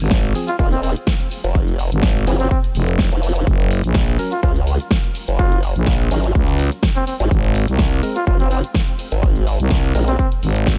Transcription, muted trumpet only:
0.48 F4
0.59 F4
0.72 C4
0.83 C4
2.40 C4
2.51 C4
4.32 F4
4.43 F4
5.39 F4
6.96 C4
7.07 C4
8.16 F4
8.27 F4
8.40 C4
8.51 C4
10.08 C4
10.19 C4

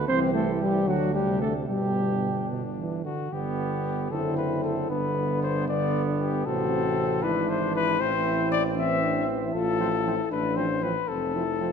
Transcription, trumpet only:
0.08 G4
0.89 D4
1.69 D4
3.05 F#4
3.32 G4
4.12 A4
4.37 B4
4.64 A4
4.90 B4
5.43 C5
5.68 D5
6.20 G4
6.46 A4
7.23 B4
7.49 C5
7.75 B4
8.01 C5
8.52 D5
8.78 E5
9.53 A4
10.31 B4
10.56 C5
10.83 B4
11.08 A4

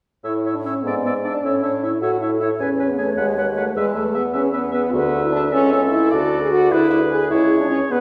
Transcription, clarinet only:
0.24 C#5
0.45 C#5
0.65 C#5
0.86 D5
1.06 D5
1.24 D5
1.44 C#5
1.64 C#5
1.84 C#5
2.02 C#5
2.23 C#5
2.42 C#5
2.61 B4
2.79 B4
2.98 B4
3.17 B4
3.37 B4
3.56 B4
3.76 B4
3.95 B4
4.14 B4
4.33 B4
4.53 B4
4.74 B4
4.93 B4
5.53 A4
6.12 F#4
6.71 G#4
7.91 G#4

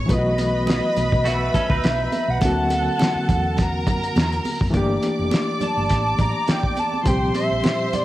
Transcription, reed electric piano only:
0.06 E3 F#3 A3
0.10 B3 F4
0.19 F#4
2.39 D3 F#3 A#3
2.44 C4 F#4
4.70 E3 A3 A#3
4.75 D4 G4
7.03 A#2 F3 G3
7.08 C4 G4

